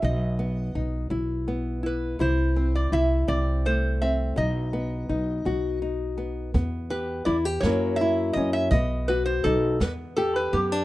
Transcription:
<<
  \new Staff \with { instrumentName = "Resonator guitar played with a steel bar" } { \time 6/8 \key e \minor \tempo 4. = 55 dis''4 r4. b'8 | c''8. d''16 e''8 d''8 c''8 e''8 | dis''2 r4 | r8 b'8 d''8 cis''8 e''8 dis''16 e''16 |
dis''8 b'16 c''16 a'8 b'8 a'16 b'16 g'8 | }
  \new Staff \with { instrumentName = "Nylon-string guitar" } { \time 6/8 \key e \minor << { dis'8 b8 dis'8 e'8 b8 e'8 | e'8 c'8 e'8 c'8 a8 c'8 | dis'8 b8 dis'8 fis'8 dis'8 b8 | b8 g'8 e'16 g'16 <fis ais cis' e'>8 e'8 cis'8 |
b8 fis'8 dis'8 b8 g'8 b16 d'16 | } \\ { b,4 r8 b,4 r8 | c4 r8 c4 r8 | b,4 r8 fis4 r8 | e,4 r8 fis,4 r8 |
b,4 r8 e,4 r8 | } >> }
  \new Staff \with { instrumentName = "Upright bass" } { \clef bass \time 6/8 \key e \minor b,,4 b,,8 b,,4. | c,4 c,8 c,4. | b,,4 b,,8 b,,4. | e,4 e,8 fis,4 fis,8 |
b,,4 b,,8 e,4 fis,8 | }
  \new DrumStaff \with { instrumentName = "Drums" } \drummode { \time 6/8 r4. r4. | r4. r4. | r4. r4. | <hh bd>8 hh8 hh8 <hh sn>8 hh8 hh8 |
<hh bd>8 hh8 hh8 <hh bd sn>8 hh8 hh8 | }
>>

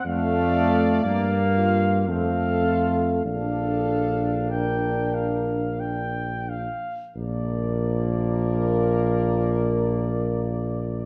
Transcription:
<<
  \new Staff \with { instrumentName = "Flugelhorn" } { \time 3/4 \key bes \major \tempo 4 = 46 f''4 f''4 f''4 | f''4 g''8 f''8 g''8 f''8 | d''2. | }
  \new Staff \with { instrumentName = "French horn section" } { \time 3/4 \key bes \major d''4. f'8 a'4 | a'4 bes'4. r8 | bes'2. | }
  \new Staff \with { instrumentName = "Trombone section" } { \time 3/4 \key bes \major a4 bes4 c'8 f'8 | d'2~ d'8 r8 | bes2. | }
  \new Staff \with { instrumentName = "Euphonium" } { \time 3/4 \key bes \major a4 bes4 a4 | d'4 d'4. r8 | f2. | }
  \new Staff \with { instrumentName = "Tuba" } { \clef bass \time 3/4 \key bes \major f,4 g,4 f,4 | bes,,2~ bes,,8 r8 | bes,,2. | }
>>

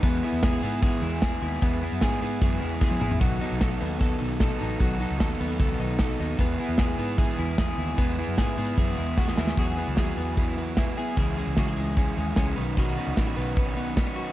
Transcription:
<<
  \new Staff \with { instrumentName = "Clean electric guitar" } { \time 4/4 \key e \major \tempo 4 = 151 b8 e'8 gis'8 b8 gis'8 e'8 gis'8 e'8 | b8 e'8 gis'8 b8 gis'8 e'8 gis'8 e'8 | fis8 dis'8 a'8 b8 a'8 dis'8 a'8 dis'8 | fis8 dis'8 a'8 b8 a'8 dis'8 a'8 dis'8 |
b8 e'8 gis'8 b8 gis'8 e'8 gis'8 e'8 | b8 e'8 gis'8 b8 gis'8 e'8 fis'16 gis'16 e'8 | <fis gis'>8 b8 gis'8 b8 e'8 b8 e'8 gis'8 | <e gis'>8 gis8 fis'16 gis'16 gis8 cis'8 gis8 cis'8 dis8 |
<dis fis'>8 b8 e'16 fis'16 b8 b16 cis'16 b8 b16 cis'16 fis'8 | }
  \new Staff \with { instrumentName = "Overdriven electric guitar" } { \time 4/4 \key e \major <e gis b e' gis'>8 <b e' gis'>8 <gis b e' gis'>8 <b e' gis'>8 <e gis b e' gis'>4 <gis b e' gis'>4 | <e gis b e' gis'>8 <b e' gis'>8 <gis b e' gis'>8 <b e' gis'>8 <e gis b e' gis'>4 <gis b e' gis'>8 <b e' gis'>8 | <b, dis fis b dis' a'>8 <fis b dis' a'>8 <fis b dis' a'>4 <b, dis fis b dis' a'>4 <fis b dis' a'>8 <fis b dis' a'>8 | <b, dis fis b dis' a'>8 <fis b dis' a'>8 <fis b dis' a'>8 <fis b dis' a'>8 <b, dis fis b dis' a'>4 <fis b dis' a'>4 |
<e gis b e' gis'>8 <b e' gis'>8 <gis b e' gis'>8 <b e' gis'>8 <e gis b e' gis'>4 <gis b e' gis'>4 | <e gis b e' gis'>8 <b e' gis'>8 <gis b e' gis'>8 <b e' gis'>8 <e gis b e' gis'>4 <gis b e' gis'>4 | <e fis b e' gis'>8 <b e' gis'>8 <fis b e' gis'>4 <e fis b e' gis'>4 <fis b e' gis'>8 <b e' gis'>8 | <cis gis cis' e' gis'>8 <cis' e' gis'>8 <gis cis' e' gis'>4 <cis gis cis' e' gis'>4 <gis cis' e' gis'>8 <fis cis' dis' b'>8 |
<b, dis fis cis' dis' b'>8 <fis cis' dis' b'>8 <fis cis' dis' b'>8 <fis cis' dis' b'>8 <b, dis fis cis' dis' b'>4 <fis cis' dis' b'>4 | }
  \new Staff \with { instrumentName = "Fingered electric bass" } { \clef bass \time 4/4 \key e \major e,8 r16 e,8. gis,4 e,4 dis,8 | e,8. fis,16 gis,8 gis,8 fis,8 e,4 a,,8 | b,,8 r16 b,,8. dis,4 b,,4 a,,8 | b,,8. cis,16 dis,8 dis,8 cis,8 b,,4 dis,8 |
e,8 r16 e,8. gis,4 e,4 dis,8 | e,8. fis,16 gis,8 gis,8 fis,8 e,4 dis,8 | e,8. cis,16 dis,8 e,2 r8 | cis,8. cis,16 cis8 cis,4 dis,8 cis,8 b,,8~ |
b,,8. cis,16 a,,8 b,,2 r8 | }
  \new DrumStaff \with { instrumentName = "Drums" } \drummode { \time 4/4 <hh bd>8 hho8 <hh bd sn>8 hho8 <hh bd>8 hho8 <hh bd sn>8 hho8 | <hh bd>8 hho8 <hh bd sn>8 hho8 <hh bd>8 hho8 <bd sn>16 tommh16 toml16 tomfh16 | <hh bd>8 hho8 <hh bd sn>8 hho8 <hh bd>8 hho8 <hh bd sn>8 hho8 | <hh bd>8 hho8 <hh bd sn>8 hho8 <hh bd>8 hho8 <hh bd sn>8 hho8 |
<hh bd>8 hho8 <hh bd sn>8 hho8 <hh bd>8 hho8 <hh bd sn>8 hho8 | <hh bd>8 hho8 <hh bd sn>8 hho8 <hh bd>8 hho8 <bd sn>16 sn16 sn16 sn16 | <hh bd>8 hho8 <hh bd sn>8 hho8 <hh bd>8 hho8 <hh bd sn>8 hho8 | <hh bd>8 hho8 <hh bd sn>8 hho8 <hh bd>8 hho8 <hh bd sn>8 hho8 |
<hh bd>8 hho8 <hh bd sn>8 hho8 <hh bd>8 hho8 <hh bd sn>8 hho8 | }
>>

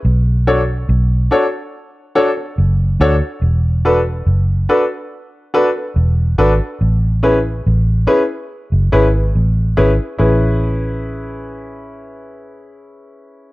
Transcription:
<<
  \new Staff \with { instrumentName = "Grand piano" } { \time 4/4 \key a \major \tempo 4 = 71 r8 <d' fis' a' cis''>16 r8. <d' fis' a' cis''>16 r8. <d' fis' a' cis''>16 <a' cis''>16 r8 <d' fis' a' cis''>16 r16 | r8 <d' fis' a' b'>16 r8. <d' fis' a' b'>16 r8. <d' fis' a' b'>16 <a' b'>16 r8 <d' fis' a' b'>16 r16 | r8 <cis' e' gis' b'>16 r8. <cis' e' gis' b'>16 r8. <cis' e' gis' b'>16 r8. <cis' e' gis' b'>16 r16 | <cis' e' gis' b'>1 | }
  \new Staff \with { instrumentName = "Fingered electric bass" } { \clef bass \time 4/4 \key a \major b,,4 b,,8 r4. fis,,8 d,16 r16 | e,,4 fis,,8 r4. e,,8 gis,,16 r16 | a,,4 a,,8 r8. fis,,16 gis,,8 a,,8 gis,,16 r16 | a,,1 | }
>>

